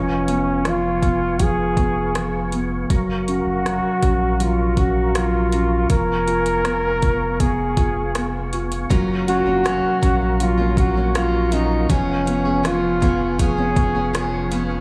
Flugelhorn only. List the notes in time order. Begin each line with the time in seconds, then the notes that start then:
Already playing: C#4
0.68 F4
1.43 G#4
3.31 F#4
4.42 F4
4.79 F#4
5.16 F4
5.91 A#4
7.40 G#4
9.28 F#4
10.41 F4
10.79 F#4
11.15 F4
11.53 D#4
11.90 C#4
12.66 F4
13.41 G#4